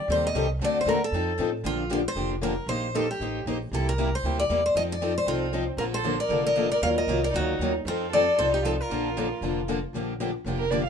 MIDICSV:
0, 0, Header, 1, 5, 480
1, 0, Start_track
1, 0, Key_signature, -2, "major"
1, 0, Tempo, 258956
1, 1120, Time_signature, 4, 2, 24, 8
1, 20191, End_track
2, 0, Start_track
2, 0, Title_t, "Steel-string acoustic guitar"
2, 0, Program_c, 0, 25
2, 0, Note_on_c, 0, 74, 95
2, 194, Note_off_c, 0, 74, 0
2, 218, Note_on_c, 0, 72, 90
2, 448, Note_off_c, 0, 72, 0
2, 494, Note_on_c, 0, 75, 87
2, 913, Note_off_c, 0, 75, 0
2, 1194, Note_on_c, 0, 74, 89
2, 1485, Note_off_c, 0, 74, 0
2, 1497, Note_on_c, 0, 72, 72
2, 1632, Note_off_c, 0, 72, 0
2, 1643, Note_on_c, 0, 70, 82
2, 1905, Note_off_c, 0, 70, 0
2, 1933, Note_on_c, 0, 69, 78
2, 2800, Note_off_c, 0, 69, 0
2, 3083, Note_on_c, 0, 65, 84
2, 3555, Note_off_c, 0, 65, 0
2, 3573, Note_on_c, 0, 74, 90
2, 3666, Note_off_c, 0, 74, 0
2, 3855, Note_on_c, 0, 72, 97
2, 4274, Note_off_c, 0, 72, 0
2, 4506, Note_on_c, 0, 70, 78
2, 4941, Note_off_c, 0, 70, 0
2, 4982, Note_on_c, 0, 72, 92
2, 5466, Note_off_c, 0, 72, 0
2, 5475, Note_on_c, 0, 69, 80
2, 5743, Note_off_c, 0, 69, 0
2, 5759, Note_on_c, 0, 67, 74
2, 6376, Note_off_c, 0, 67, 0
2, 6941, Note_on_c, 0, 69, 83
2, 7196, Note_off_c, 0, 69, 0
2, 7208, Note_on_c, 0, 70, 80
2, 7677, Note_off_c, 0, 70, 0
2, 7694, Note_on_c, 0, 72, 87
2, 8115, Note_off_c, 0, 72, 0
2, 8147, Note_on_c, 0, 74, 83
2, 8626, Note_off_c, 0, 74, 0
2, 8633, Note_on_c, 0, 72, 83
2, 8826, Note_off_c, 0, 72, 0
2, 8838, Note_on_c, 0, 75, 90
2, 8931, Note_off_c, 0, 75, 0
2, 9125, Note_on_c, 0, 74, 87
2, 9587, Note_off_c, 0, 74, 0
2, 9595, Note_on_c, 0, 72, 81
2, 9768, Note_off_c, 0, 72, 0
2, 9788, Note_on_c, 0, 65, 83
2, 10481, Note_off_c, 0, 65, 0
2, 10720, Note_on_c, 0, 70, 88
2, 10812, Note_off_c, 0, 70, 0
2, 11014, Note_on_c, 0, 72, 92
2, 11454, Note_off_c, 0, 72, 0
2, 11493, Note_on_c, 0, 74, 93
2, 11976, Note_off_c, 0, 74, 0
2, 11984, Note_on_c, 0, 75, 90
2, 12420, Note_off_c, 0, 75, 0
2, 12447, Note_on_c, 0, 74, 83
2, 12634, Note_off_c, 0, 74, 0
2, 12658, Note_on_c, 0, 77, 99
2, 12751, Note_off_c, 0, 77, 0
2, 12936, Note_on_c, 0, 75, 89
2, 13409, Note_off_c, 0, 75, 0
2, 13426, Note_on_c, 0, 74, 95
2, 13604, Note_off_c, 0, 74, 0
2, 13635, Note_on_c, 0, 66, 82
2, 14325, Note_off_c, 0, 66, 0
2, 14607, Note_on_c, 0, 65, 86
2, 15076, Note_on_c, 0, 74, 94
2, 15080, Note_off_c, 0, 65, 0
2, 15544, Note_on_c, 0, 72, 88
2, 15554, Note_off_c, 0, 74, 0
2, 15792, Note_off_c, 0, 72, 0
2, 15827, Note_on_c, 0, 67, 74
2, 16023, Note_off_c, 0, 67, 0
2, 16041, Note_on_c, 0, 69, 81
2, 16134, Note_off_c, 0, 69, 0
2, 16321, Note_on_c, 0, 70, 81
2, 17944, Note_off_c, 0, 70, 0
2, 20191, End_track
3, 0, Start_track
3, 0, Title_t, "Violin"
3, 0, Program_c, 1, 40
3, 9748, Note_on_c, 1, 60, 69
3, 10459, Note_off_c, 1, 60, 0
3, 10751, Note_on_c, 1, 65, 72
3, 10869, Note_off_c, 1, 65, 0
3, 11021, Note_on_c, 1, 69, 71
3, 11458, Note_off_c, 1, 69, 0
3, 11494, Note_on_c, 1, 70, 82
3, 11934, Note_off_c, 1, 70, 0
3, 11969, Note_on_c, 1, 70, 82
3, 12412, Note_off_c, 1, 70, 0
3, 12442, Note_on_c, 1, 70, 75
3, 12631, Note_off_c, 1, 70, 0
3, 12642, Note_on_c, 1, 70, 87
3, 12938, Note_off_c, 1, 70, 0
3, 12938, Note_on_c, 1, 70, 80
3, 13398, Note_off_c, 1, 70, 0
3, 13409, Note_on_c, 1, 70, 75
3, 13581, Note_off_c, 1, 70, 0
3, 13592, Note_on_c, 1, 63, 72
3, 14302, Note_off_c, 1, 63, 0
3, 14576, Note_on_c, 1, 60, 74
3, 15017, Note_off_c, 1, 60, 0
3, 15060, Note_on_c, 1, 69, 83
3, 15499, Note_off_c, 1, 69, 0
3, 15516, Note_on_c, 1, 69, 79
3, 15777, Note_off_c, 1, 69, 0
3, 15788, Note_on_c, 1, 63, 70
3, 15970, Note_off_c, 1, 63, 0
3, 15981, Note_on_c, 1, 65, 64
3, 16271, Note_off_c, 1, 65, 0
3, 16271, Note_on_c, 1, 65, 74
3, 17919, Note_off_c, 1, 65, 0
3, 19620, Note_on_c, 1, 70, 81
3, 19844, Note_on_c, 1, 74, 71
3, 19872, Note_off_c, 1, 70, 0
3, 20088, Note_off_c, 1, 74, 0
3, 20099, Note_on_c, 1, 77, 78
3, 20191, Note_off_c, 1, 77, 0
3, 20191, End_track
4, 0, Start_track
4, 0, Title_t, "Steel-string acoustic guitar"
4, 0, Program_c, 2, 25
4, 181, Note_on_c, 2, 48, 70
4, 185, Note_on_c, 2, 51, 72
4, 189, Note_on_c, 2, 55, 72
4, 190, Note_on_c, 2, 67, 68
4, 191, Note_on_c, 2, 60, 74
4, 203, Note_on_c, 2, 69, 69
4, 510, Note_off_c, 2, 48, 0
4, 512, Note_off_c, 2, 51, 0
4, 514, Note_off_c, 2, 55, 0
4, 514, Note_off_c, 2, 67, 0
4, 515, Note_off_c, 2, 60, 0
4, 521, Note_off_c, 2, 69, 0
4, 638, Note_on_c, 2, 48, 89
4, 646, Note_on_c, 2, 51, 81
4, 654, Note_on_c, 2, 55, 90
4, 657, Note_on_c, 2, 60, 91
4, 668, Note_on_c, 2, 69, 91
4, 669, Note_on_c, 2, 67, 103
4, 831, Note_off_c, 2, 48, 0
4, 835, Note_off_c, 2, 51, 0
4, 838, Note_off_c, 2, 55, 0
4, 840, Note_off_c, 2, 60, 0
4, 845, Note_off_c, 2, 69, 0
4, 846, Note_off_c, 2, 67, 0
4, 1129, Note_on_c, 2, 50, 63
4, 1146, Note_on_c, 2, 57, 69
4, 1150, Note_on_c, 2, 60, 62
4, 1151, Note_on_c, 2, 66, 64
4, 1161, Note_on_c, 2, 69, 70
4, 1464, Note_off_c, 2, 50, 0
4, 1472, Note_off_c, 2, 57, 0
4, 1474, Note_off_c, 2, 60, 0
4, 1475, Note_off_c, 2, 66, 0
4, 1480, Note_off_c, 2, 69, 0
4, 1597, Note_on_c, 2, 50, 95
4, 1609, Note_on_c, 2, 57, 87
4, 1609, Note_on_c, 2, 60, 91
4, 1620, Note_on_c, 2, 66, 101
4, 1625, Note_on_c, 2, 69, 101
4, 1790, Note_off_c, 2, 50, 0
4, 1796, Note_off_c, 2, 57, 0
4, 1796, Note_off_c, 2, 60, 0
4, 1801, Note_off_c, 2, 66, 0
4, 1804, Note_off_c, 2, 69, 0
4, 2097, Note_on_c, 2, 53, 72
4, 2116, Note_on_c, 2, 63, 77
4, 2117, Note_on_c, 2, 60, 69
4, 2120, Note_on_c, 2, 69, 77
4, 2428, Note_off_c, 2, 53, 0
4, 2437, Note_off_c, 2, 63, 0
4, 2438, Note_off_c, 2, 60, 0
4, 2439, Note_off_c, 2, 69, 0
4, 2578, Note_on_c, 2, 53, 77
4, 2581, Note_on_c, 2, 60, 91
4, 2592, Note_on_c, 2, 63, 86
4, 2592, Note_on_c, 2, 69, 82
4, 2760, Note_off_c, 2, 53, 0
4, 2762, Note_off_c, 2, 60, 0
4, 2767, Note_off_c, 2, 69, 0
4, 2768, Note_off_c, 2, 63, 0
4, 3042, Note_on_c, 2, 50, 64
4, 3055, Note_on_c, 2, 53, 59
4, 3060, Note_on_c, 2, 58, 55
4, 3061, Note_on_c, 2, 62, 65
4, 3063, Note_on_c, 2, 67, 66
4, 3380, Note_off_c, 2, 50, 0
4, 3387, Note_off_c, 2, 53, 0
4, 3389, Note_off_c, 2, 58, 0
4, 3390, Note_off_c, 2, 62, 0
4, 3391, Note_off_c, 2, 67, 0
4, 3527, Note_on_c, 2, 53, 91
4, 3530, Note_on_c, 2, 50, 86
4, 3546, Note_on_c, 2, 58, 81
4, 3548, Note_on_c, 2, 62, 88
4, 3548, Note_on_c, 2, 67, 96
4, 3715, Note_off_c, 2, 53, 0
4, 3716, Note_off_c, 2, 50, 0
4, 3725, Note_off_c, 2, 58, 0
4, 3726, Note_off_c, 2, 62, 0
4, 3726, Note_off_c, 2, 67, 0
4, 3995, Note_on_c, 2, 50, 65
4, 4000, Note_on_c, 2, 53, 64
4, 4004, Note_on_c, 2, 58, 67
4, 4010, Note_on_c, 2, 62, 63
4, 4017, Note_on_c, 2, 67, 71
4, 4337, Note_off_c, 2, 50, 0
4, 4339, Note_off_c, 2, 53, 0
4, 4342, Note_off_c, 2, 58, 0
4, 4344, Note_off_c, 2, 62, 0
4, 4348, Note_off_c, 2, 67, 0
4, 4476, Note_on_c, 2, 50, 81
4, 4476, Note_on_c, 2, 58, 91
4, 4480, Note_on_c, 2, 53, 86
4, 4491, Note_on_c, 2, 62, 93
4, 4493, Note_on_c, 2, 67, 86
4, 4670, Note_off_c, 2, 50, 0
4, 4670, Note_off_c, 2, 58, 0
4, 4672, Note_off_c, 2, 53, 0
4, 4677, Note_off_c, 2, 62, 0
4, 4678, Note_off_c, 2, 67, 0
4, 4987, Note_on_c, 2, 58, 56
4, 4994, Note_on_c, 2, 63, 60
4, 5005, Note_on_c, 2, 67, 58
4, 5007, Note_on_c, 2, 72, 69
4, 5314, Note_off_c, 2, 58, 0
4, 5317, Note_off_c, 2, 63, 0
4, 5322, Note_off_c, 2, 67, 0
4, 5323, Note_off_c, 2, 72, 0
4, 5460, Note_on_c, 2, 63, 88
4, 5466, Note_on_c, 2, 58, 81
4, 5476, Note_on_c, 2, 67, 93
4, 5480, Note_on_c, 2, 72, 95
4, 5643, Note_off_c, 2, 63, 0
4, 5645, Note_off_c, 2, 58, 0
4, 5650, Note_off_c, 2, 67, 0
4, 5652, Note_off_c, 2, 72, 0
4, 5945, Note_on_c, 2, 58, 59
4, 5951, Note_on_c, 2, 63, 68
4, 5959, Note_on_c, 2, 67, 68
4, 5972, Note_on_c, 2, 72, 70
4, 6273, Note_off_c, 2, 58, 0
4, 6276, Note_off_c, 2, 63, 0
4, 6280, Note_off_c, 2, 67, 0
4, 6286, Note_off_c, 2, 72, 0
4, 6433, Note_on_c, 2, 58, 87
4, 6438, Note_on_c, 2, 63, 85
4, 6444, Note_on_c, 2, 72, 89
4, 6445, Note_on_c, 2, 67, 99
4, 6609, Note_off_c, 2, 58, 0
4, 6612, Note_off_c, 2, 63, 0
4, 6615, Note_off_c, 2, 67, 0
4, 6615, Note_off_c, 2, 72, 0
4, 6905, Note_on_c, 2, 48, 53
4, 6911, Note_on_c, 2, 55, 66
4, 6920, Note_on_c, 2, 58, 72
4, 6929, Note_on_c, 2, 67, 68
4, 6932, Note_on_c, 2, 64, 66
4, 7233, Note_off_c, 2, 48, 0
4, 7236, Note_off_c, 2, 55, 0
4, 7241, Note_off_c, 2, 58, 0
4, 7245, Note_off_c, 2, 67, 0
4, 7247, Note_off_c, 2, 64, 0
4, 7379, Note_on_c, 2, 48, 75
4, 7379, Note_on_c, 2, 55, 89
4, 7381, Note_on_c, 2, 58, 93
4, 7396, Note_on_c, 2, 67, 100
4, 7398, Note_on_c, 2, 64, 87
4, 7562, Note_off_c, 2, 48, 0
4, 7562, Note_off_c, 2, 55, 0
4, 7564, Note_off_c, 2, 58, 0
4, 7571, Note_off_c, 2, 67, 0
4, 7572, Note_off_c, 2, 64, 0
4, 7867, Note_on_c, 2, 48, 63
4, 7879, Note_on_c, 2, 58, 69
4, 7880, Note_on_c, 2, 55, 64
4, 7880, Note_on_c, 2, 64, 67
4, 7886, Note_on_c, 2, 67, 74
4, 8194, Note_off_c, 2, 48, 0
4, 8200, Note_off_c, 2, 58, 0
4, 8201, Note_off_c, 2, 55, 0
4, 8201, Note_off_c, 2, 64, 0
4, 8204, Note_off_c, 2, 67, 0
4, 8327, Note_on_c, 2, 48, 77
4, 8330, Note_on_c, 2, 55, 84
4, 8345, Note_on_c, 2, 58, 86
4, 8348, Note_on_c, 2, 64, 86
4, 8362, Note_on_c, 2, 67, 87
4, 8517, Note_off_c, 2, 48, 0
4, 8518, Note_off_c, 2, 55, 0
4, 8525, Note_off_c, 2, 58, 0
4, 8527, Note_off_c, 2, 64, 0
4, 8534, Note_off_c, 2, 67, 0
4, 8828, Note_on_c, 2, 53, 59
4, 8843, Note_on_c, 2, 60, 70
4, 8849, Note_on_c, 2, 63, 57
4, 8858, Note_on_c, 2, 69, 65
4, 9155, Note_off_c, 2, 53, 0
4, 9163, Note_off_c, 2, 60, 0
4, 9165, Note_off_c, 2, 63, 0
4, 9170, Note_off_c, 2, 69, 0
4, 9287, Note_on_c, 2, 53, 87
4, 9299, Note_on_c, 2, 60, 88
4, 9303, Note_on_c, 2, 63, 90
4, 9310, Note_on_c, 2, 69, 88
4, 9477, Note_off_c, 2, 53, 0
4, 9483, Note_off_c, 2, 60, 0
4, 9485, Note_off_c, 2, 63, 0
4, 9488, Note_off_c, 2, 69, 0
4, 9758, Note_on_c, 2, 53, 62
4, 9765, Note_on_c, 2, 60, 65
4, 9772, Note_on_c, 2, 63, 70
4, 9783, Note_on_c, 2, 69, 72
4, 10100, Note_off_c, 2, 53, 0
4, 10104, Note_off_c, 2, 60, 0
4, 10107, Note_off_c, 2, 63, 0
4, 10113, Note_off_c, 2, 69, 0
4, 10243, Note_on_c, 2, 53, 92
4, 10257, Note_on_c, 2, 60, 83
4, 10262, Note_on_c, 2, 63, 94
4, 10263, Note_on_c, 2, 69, 95
4, 10435, Note_off_c, 2, 53, 0
4, 10442, Note_off_c, 2, 60, 0
4, 10444, Note_off_c, 2, 63, 0
4, 10445, Note_off_c, 2, 69, 0
4, 10718, Note_on_c, 2, 53, 60
4, 10720, Note_on_c, 2, 50, 58
4, 10733, Note_on_c, 2, 58, 63
4, 10739, Note_on_c, 2, 69, 70
4, 10742, Note_on_c, 2, 62, 57
4, 11061, Note_off_c, 2, 50, 0
4, 11061, Note_off_c, 2, 53, 0
4, 11068, Note_off_c, 2, 58, 0
4, 11071, Note_off_c, 2, 69, 0
4, 11072, Note_off_c, 2, 62, 0
4, 11199, Note_on_c, 2, 50, 85
4, 11211, Note_on_c, 2, 53, 76
4, 11220, Note_on_c, 2, 62, 88
4, 11222, Note_on_c, 2, 58, 85
4, 11222, Note_on_c, 2, 69, 94
4, 11393, Note_off_c, 2, 50, 0
4, 11399, Note_off_c, 2, 53, 0
4, 11404, Note_off_c, 2, 58, 0
4, 11404, Note_off_c, 2, 62, 0
4, 11405, Note_off_c, 2, 69, 0
4, 11664, Note_on_c, 2, 50, 71
4, 11678, Note_on_c, 2, 53, 66
4, 11682, Note_on_c, 2, 58, 66
4, 11694, Note_on_c, 2, 69, 68
4, 11697, Note_on_c, 2, 62, 68
4, 12013, Note_off_c, 2, 50, 0
4, 12021, Note_off_c, 2, 53, 0
4, 12022, Note_off_c, 2, 58, 0
4, 12029, Note_off_c, 2, 69, 0
4, 12030, Note_off_c, 2, 62, 0
4, 12163, Note_on_c, 2, 50, 85
4, 12173, Note_on_c, 2, 53, 91
4, 12182, Note_on_c, 2, 58, 84
4, 12183, Note_on_c, 2, 62, 89
4, 12191, Note_on_c, 2, 69, 84
4, 12355, Note_off_c, 2, 50, 0
4, 12361, Note_off_c, 2, 53, 0
4, 12365, Note_off_c, 2, 58, 0
4, 12365, Note_off_c, 2, 62, 0
4, 12369, Note_off_c, 2, 69, 0
4, 12643, Note_on_c, 2, 51, 60
4, 12650, Note_on_c, 2, 54, 56
4, 12655, Note_on_c, 2, 58, 69
4, 12679, Note_on_c, 2, 65, 65
4, 12983, Note_off_c, 2, 51, 0
4, 12987, Note_off_c, 2, 54, 0
4, 12989, Note_off_c, 2, 58, 0
4, 13001, Note_off_c, 2, 65, 0
4, 13127, Note_on_c, 2, 51, 88
4, 13135, Note_on_c, 2, 54, 78
4, 13141, Note_on_c, 2, 58, 90
4, 13151, Note_on_c, 2, 65, 99
4, 13317, Note_off_c, 2, 51, 0
4, 13321, Note_off_c, 2, 54, 0
4, 13324, Note_off_c, 2, 58, 0
4, 13329, Note_off_c, 2, 65, 0
4, 13633, Note_on_c, 2, 51, 65
4, 13642, Note_on_c, 2, 58, 67
4, 13650, Note_on_c, 2, 65, 70
4, 13651, Note_on_c, 2, 54, 67
4, 13958, Note_off_c, 2, 51, 0
4, 13963, Note_off_c, 2, 58, 0
4, 13967, Note_off_c, 2, 54, 0
4, 13967, Note_off_c, 2, 65, 0
4, 14115, Note_on_c, 2, 51, 91
4, 14125, Note_on_c, 2, 58, 96
4, 14129, Note_on_c, 2, 54, 90
4, 14134, Note_on_c, 2, 65, 91
4, 14292, Note_off_c, 2, 51, 0
4, 14296, Note_off_c, 2, 58, 0
4, 14298, Note_off_c, 2, 54, 0
4, 14301, Note_off_c, 2, 65, 0
4, 14599, Note_on_c, 2, 53, 57
4, 14607, Note_on_c, 2, 60, 71
4, 14621, Note_on_c, 2, 63, 58
4, 14634, Note_on_c, 2, 69, 76
4, 14921, Note_off_c, 2, 53, 0
4, 14926, Note_off_c, 2, 60, 0
4, 14932, Note_off_c, 2, 63, 0
4, 14939, Note_off_c, 2, 69, 0
4, 15082, Note_on_c, 2, 53, 88
4, 15095, Note_on_c, 2, 63, 100
4, 15097, Note_on_c, 2, 60, 97
4, 15107, Note_on_c, 2, 69, 90
4, 15255, Note_off_c, 2, 53, 0
4, 15261, Note_off_c, 2, 63, 0
4, 15262, Note_off_c, 2, 60, 0
4, 15267, Note_off_c, 2, 69, 0
4, 15546, Note_on_c, 2, 53, 62
4, 15557, Note_on_c, 2, 60, 69
4, 15564, Note_on_c, 2, 63, 76
4, 15567, Note_on_c, 2, 69, 72
4, 15875, Note_off_c, 2, 53, 0
4, 15880, Note_off_c, 2, 60, 0
4, 15884, Note_off_c, 2, 63, 0
4, 15885, Note_off_c, 2, 69, 0
4, 16027, Note_on_c, 2, 53, 86
4, 16043, Note_on_c, 2, 60, 88
4, 16054, Note_on_c, 2, 63, 92
4, 16057, Note_on_c, 2, 69, 104
4, 16208, Note_off_c, 2, 53, 0
4, 16215, Note_off_c, 2, 60, 0
4, 16221, Note_off_c, 2, 63, 0
4, 16222, Note_off_c, 2, 69, 0
4, 16514, Note_on_c, 2, 50, 62
4, 16517, Note_on_c, 2, 58, 66
4, 16518, Note_on_c, 2, 53, 58
4, 16521, Note_on_c, 2, 62, 70
4, 16527, Note_on_c, 2, 69, 68
4, 16839, Note_off_c, 2, 50, 0
4, 16840, Note_off_c, 2, 53, 0
4, 16840, Note_off_c, 2, 58, 0
4, 16842, Note_off_c, 2, 62, 0
4, 16845, Note_off_c, 2, 69, 0
4, 16991, Note_on_c, 2, 50, 86
4, 16994, Note_on_c, 2, 53, 84
4, 17006, Note_on_c, 2, 58, 92
4, 17007, Note_on_c, 2, 62, 92
4, 17019, Note_on_c, 2, 69, 95
4, 17169, Note_off_c, 2, 50, 0
4, 17171, Note_off_c, 2, 53, 0
4, 17177, Note_off_c, 2, 58, 0
4, 17177, Note_off_c, 2, 62, 0
4, 17183, Note_off_c, 2, 69, 0
4, 17470, Note_on_c, 2, 50, 60
4, 17474, Note_on_c, 2, 53, 68
4, 17484, Note_on_c, 2, 62, 69
4, 17486, Note_on_c, 2, 58, 75
4, 17501, Note_on_c, 2, 69, 71
4, 17797, Note_off_c, 2, 50, 0
4, 17798, Note_off_c, 2, 53, 0
4, 17804, Note_off_c, 2, 58, 0
4, 17804, Note_off_c, 2, 62, 0
4, 17812, Note_off_c, 2, 69, 0
4, 17944, Note_on_c, 2, 50, 78
4, 17958, Note_on_c, 2, 53, 81
4, 17958, Note_on_c, 2, 58, 94
4, 17961, Note_on_c, 2, 62, 87
4, 17961, Note_on_c, 2, 69, 87
4, 18126, Note_off_c, 2, 50, 0
4, 18132, Note_off_c, 2, 53, 0
4, 18133, Note_off_c, 2, 58, 0
4, 18134, Note_off_c, 2, 62, 0
4, 18134, Note_off_c, 2, 69, 0
4, 18427, Note_on_c, 2, 50, 60
4, 18432, Note_on_c, 2, 53, 59
4, 18434, Note_on_c, 2, 58, 59
4, 18442, Note_on_c, 2, 62, 61
4, 18451, Note_on_c, 2, 67, 62
4, 18755, Note_off_c, 2, 50, 0
4, 18757, Note_off_c, 2, 53, 0
4, 18758, Note_off_c, 2, 58, 0
4, 18762, Note_off_c, 2, 62, 0
4, 18767, Note_off_c, 2, 67, 0
4, 18909, Note_on_c, 2, 50, 76
4, 18909, Note_on_c, 2, 53, 89
4, 18915, Note_on_c, 2, 58, 91
4, 18924, Note_on_c, 2, 67, 92
4, 18925, Note_on_c, 2, 62, 86
4, 19088, Note_off_c, 2, 50, 0
4, 19088, Note_off_c, 2, 53, 0
4, 19091, Note_off_c, 2, 58, 0
4, 19095, Note_off_c, 2, 67, 0
4, 19096, Note_off_c, 2, 62, 0
4, 19382, Note_on_c, 2, 50, 63
4, 19386, Note_on_c, 2, 53, 61
4, 19396, Note_on_c, 2, 58, 73
4, 19397, Note_on_c, 2, 62, 63
4, 19404, Note_on_c, 2, 67, 72
4, 19712, Note_off_c, 2, 50, 0
4, 19714, Note_off_c, 2, 53, 0
4, 19718, Note_off_c, 2, 58, 0
4, 19719, Note_off_c, 2, 62, 0
4, 19722, Note_off_c, 2, 67, 0
4, 19854, Note_on_c, 2, 50, 82
4, 19854, Note_on_c, 2, 53, 82
4, 19866, Note_on_c, 2, 58, 87
4, 19867, Note_on_c, 2, 62, 88
4, 19870, Note_on_c, 2, 67, 92
4, 20039, Note_off_c, 2, 50, 0
4, 20040, Note_off_c, 2, 53, 0
4, 20046, Note_off_c, 2, 58, 0
4, 20046, Note_off_c, 2, 62, 0
4, 20048, Note_off_c, 2, 67, 0
4, 20191, End_track
5, 0, Start_track
5, 0, Title_t, "Upright bass"
5, 0, Program_c, 3, 32
5, 148, Note_on_c, 3, 39, 81
5, 620, Note_off_c, 3, 39, 0
5, 628, Note_on_c, 3, 36, 84
5, 1088, Note_off_c, 3, 36, 0
5, 1099, Note_on_c, 3, 38, 82
5, 1569, Note_off_c, 3, 38, 0
5, 1581, Note_on_c, 3, 39, 83
5, 2055, Note_off_c, 3, 39, 0
5, 2078, Note_on_c, 3, 41, 78
5, 2544, Note_off_c, 3, 41, 0
5, 2573, Note_on_c, 3, 45, 84
5, 3021, Note_off_c, 3, 45, 0
5, 3032, Note_on_c, 3, 34, 79
5, 3803, Note_off_c, 3, 34, 0
5, 3985, Note_on_c, 3, 29, 74
5, 4760, Note_off_c, 3, 29, 0
5, 4941, Note_on_c, 3, 34, 81
5, 5717, Note_off_c, 3, 34, 0
5, 5929, Note_on_c, 3, 33, 78
5, 6334, Note_off_c, 3, 33, 0
5, 6407, Note_on_c, 3, 34, 78
5, 6813, Note_off_c, 3, 34, 0
5, 6885, Note_on_c, 3, 36, 78
5, 7652, Note_off_c, 3, 36, 0
5, 7841, Note_on_c, 3, 38, 80
5, 8250, Note_off_c, 3, 38, 0
5, 8331, Note_on_c, 3, 40, 71
5, 8736, Note_off_c, 3, 40, 0
5, 8801, Note_on_c, 3, 41, 77
5, 9570, Note_off_c, 3, 41, 0
5, 9758, Note_on_c, 3, 36, 78
5, 10529, Note_off_c, 3, 36, 0
5, 10696, Note_on_c, 3, 34, 81
5, 11475, Note_off_c, 3, 34, 0
5, 11657, Note_on_c, 3, 29, 80
5, 12436, Note_off_c, 3, 29, 0
5, 12639, Note_on_c, 3, 39, 82
5, 13025, Note_off_c, 3, 39, 0
5, 13106, Note_on_c, 3, 36, 79
5, 13522, Note_off_c, 3, 36, 0
5, 13590, Note_on_c, 3, 38, 78
5, 14004, Note_off_c, 3, 38, 0
5, 14067, Note_on_c, 3, 39, 81
5, 14483, Note_off_c, 3, 39, 0
5, 14551, Note_on_c, 3, 41, 84
5, 15324, Note_off_c, 3, 41, 0
5, 15536, Note_on_c, 3, 36, 79
5, 16299, Note_off_c, 3, 36, 0
5, 16495, Note_on_c, 3, 34, 81
5, 17259, Note_off_c, 3, 34, 0
5, 17446, Note_on_c, 3, 29, 78
5, 18213, Note_off_c, 3, 29, 0
5, 18408, Note_on_c, 3, 34, 74
5, 19173, Note_off_c, 3, 34, 0
5, 19360, Note_on_c, 3, 29, 77
5, 20129, Note_off_c, 3, 29, 0
5, 20191, End_track
0, 0, End_of_file